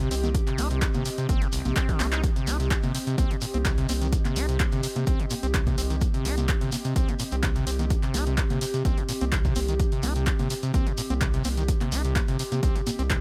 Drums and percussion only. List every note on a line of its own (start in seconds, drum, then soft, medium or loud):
0.01 shekere soft
0.11 open hi-hat loud
0.11 shekere medium
0.24 closed hi-hat soft
0.24 high conga medium
0.24 shekere soft
0.35 kick loud
0.35 closed hi-hat loud
0.35 shekere medium
0.47 clap soft
0.47 closed hi-hat soft
0.47 shekere soft
0.58 open hi-hat loud
0.58 high conga medium
0.58 shekere medium
0.70 closed hi-hat soft
0.70 shekere soft
0.81 kick loud
0.81 clap loud
0.81 closed hi-hat loud
0.81 shekere medium
0.94 closed hi-hat soft
0.94 high conga medium
0.94 shekere soft
1.05 open hi-hat loud
1.05 shekere medium
1.18 closed hi-hat soft
1.18 shekere soft
1.29 kick loud
1.29 closed hi-hat medium
1.29 high conga medium
1.29 shekere soft
1.42 closed hi-hat soft
1.42 shekere soft
1.52 open hi-hat loud
1.52 shekere medium
1.65 closed hi-hat soft
1.65 high conga medium
1.65 shekere soft
1.76 kick loud
1.76 clap loud
1.76 closed hi-hat loud
1.76 shekere medium
1.89 kick medium
1.89 closed hi-hat soft
1.89 shekere soft
2.00 clap medium
2.00 open hi-hat loud
2.00 high conga medium
2.00 shekere medium
2.13 clap loud
2.13 closed hi-hat soft
2.13 shekere soft
2.23 kick loud
2.23 closed hi-hat loud
2.23 shekere medium
2.36 closed hi-hat soft
2.36 shekere soft
2.47 open hi-hat loud
2.47 high conga medium
2.47 shekere loud
2.60 closed hi-hat soft
2.60 shekere soft
2.71 kick loud
2.71 clap loud
2.71 closed hi-hat loud
2.71 shekere medium
2.83 closed hi-hat soft
2.83 high conga medium
2.83 shekere soft
2.95 open hi-hat loud
2.95 shekere medium
3.07 closed hi-hat soft
3.07 shekere soft
3.18 kick loud
3.18 closed hi-hat loud
3.18 high conga medium
3.18 shekere medium
3.31 closed hi-hat soft
3.31 shekere soft
3.41 open hi-hat loud
3.41 shekere medium
3.54 closed hi-hat soft
3.54 high conga medium
3.54 shekere soft
3.65 kick loud
3.65 clap loud
3.65 closed hi-hat loud
3.65 shekere medium
3.78 closed hi-hat soft
3.78 shekere soft
3.89 open hi-hat loud
3.89 high conga medium
3.89 shekere medium
4.02 closed hi-hat soft
4.02 shekere soft
4.13 kick loud
4.13 closed hi-hat medium
4.13 shekere medium
4.25 clap soft
4.25 closed hi-hat soft
4.25 high conga medium
4.25 shekere soft
4.36 open hi-hat loud
4.36 shekere medium
4.49 closed hi-hat soft
4.49 shekere soft
4.59 kick loud
4.59 clap loud
4.59 closed hi-hat medium
4.59 high conga medium
4.59 shekere medium
4.72 closed hi-hat soft
4.72 shekere soft
4.83 open hi-hat loud
4.83 shekere medium
4.96 closed hi-hat soft
4.96 high conga medium
4.96 shekere soft
5.07 kick loud
5.07 closed hi-hat medium
5.07 shekere medium
5.20 closed hi-hat soft
5.20 shekere soft
5.30 open hi-hat loud
5.30 high conga medium
5.30 shekere loud
5.43 closed hi-hat soft
5.43 shekere soft
5.54 kick loud
5.54 clap loud
5.54 closed hi-hat loud
5.54 shekere medium
5.67 kick medium
5.67 closed hi-hat soft
5.67 high conga medium
5.67 shekere soft
5.78 open hi-hat loud
5.78 shekere loud
5.90 closed hi-hat soft
5.90 shekere soft
6.01 kick loud
6.01 closed hi-hat medium
6.01 high conga medium
6.01 shekere medium
6.14 closed hi-hat soft
6.14 shekere soft
6.25 open hi-hat loud
6.25 shekere medium
6.37 closed hi-hat soft
6.37 high conga medium
6.37 shekere soft
6.48 kick loud
6.48 clap loud
6.48 closed hi-hat medium
6.48 shekere medium
6.61 closed hi-hat soft
6.61 shekere soft
6.72 open hi-hat loud
6.72 high conga medium
6.72 shekere loud
6.84 closed hi-hat soft
6.84 shekere soft
6.96 kick loud
6.96 closed hi-hat medium
6.96 shekere medium
7.08 closed hi-hat soft
7.08 high conga medium
7.08 shekere soft
7.19 open hi-hat loud
7.19 shekere loud
7.31 closed hi-hat soft
7.31 shekere soft
7.43 kick loud
7.43 clap loud
7.43 closed hi-hat medium
7.43 high conga medium
7.43 shekere medium
7.55 closed hi-hat soft
7.55 shekere soft
7.67 open hi-hat loud
7.67 shekere loud
7.79 closed hi-hat soft
7.79 high conga medium
7.79 shekere soft
7.90 kick loud
7.90 closed hi-hat medium
7.90 shekere medium
8.03 clap soft
8.03 closed hi-hat soft
8.03 shekere soft
8.14 open hi-hat loud
8.14 high conga medium
8.14 shekere medium
8.26 closed hi-hat soft
8.26 shekere soft
8.37 kick loud
8.37 clap loud
8.37 closed hi-hat medium
8.37 shekere medium
8.50 closed hi-hat soft
8.50 high conga medium
8.50 shekere soft
8.61 open hi-hat loud
8.61 shekere medium
8.74 closed hi-hat soft
8.74 shekere soft
8.85 kick loud
8.85 closed hi-hat medium
8.85 high conga medium
8.85 shekere medium
8.97 closed hi-hat soft
8.97 shekere soft
9.09 open hi-hat loud
9.09 shekere medium
9.21 closed hi-hat soft
9.21 high conga medium
9.21 shekere soft
9.32 kick loud
9.32 clap loud
9.32 closed hi-hat medium
9.32 shekere medium
9.45 kick medium
9.45 closed hi-hat soft
9.45 shekere soft
9.55 open hi-hat loud
9.55 high conga medium
9.55 shekere medium
9.68 closed hi-hat soft
9.68 shekere soft
9.80 kick loud
9.80 closed hi-hat medium
9.80 shekere medium
9.92 closed hi-hat soft
9.92 shekere soft
10.03 open hi-hat loud
10.03 high conga medium
10.03 shekere medium
10.15 closed hi-hat soft
10.15 shekere soft
10.26 kick loud
10.26 clap loud
10.26 closed hi-hat medium
10.26 shekere medium
10.39 closed hi-hat soft
10.39 high conga medium
10.39 shekere soft
10.50 open hi-hat loud
10.50 shekere medium
10.63 closed hi-hat soft
10.63 shekere soft
10.74 kick loud
10.74 closed hi-hat medium
10.74 high conga medium
10.74 shekere medium
10.87 closed hi-hat soft
10.87 shekere soft
10.97 open hi-hat loud
10.97 shekere medium
11.10 closed hi-hat soft
11.10 high conga medium
11.10 shekere soft
11.21 kick loud
11.21 clap loud
11.21 closed hi-hat medium
11.21 shekere medium
11.33 closed hi-hat soft
11.33 shekere soft
11.44 open hi-hat loud
11.44 high conga medium
11.44 shekere medium
11.57 closed hi-hat soft
11.57 shekere soft
11.68 kick loud
11.68 closed hi-hat loud
11.68 shekere soft
11.81 clap soft
11.81 closed hi-hat soft
11.81 high conga medium
11.81 shekere soft
11.92 open hi-hat loud
11.92 shekere medium
12.04 closed hi-hat soft
12.04 shekere soft
12.16 kick loud
12.16 clap loud
12.16 closed hi-hat medium
12.16 high conga medium
12.16 shekere medium
12.28 closed hi-hat soft
12.28 shekere soft
12.39 open hi-hat loud
12.39 shekere medium
12.52 closed hi-hat soft
12.52 high conga medium
12.52 shekere soft
12.63 kick loud
12.63 closed hi-hat medium
12.63 shekere soft
12.76 closed hi-hat soft
12.76 shekere soft
12.87 open hi-hat loud
12.87 high conga medium
12.87 shekere loud
12.99 closed hi-hat soft
12.99 shekere soft
13.10 kick loud
13.10 clap loud
13.10 closed hi-hat medium
13.10 shekere medium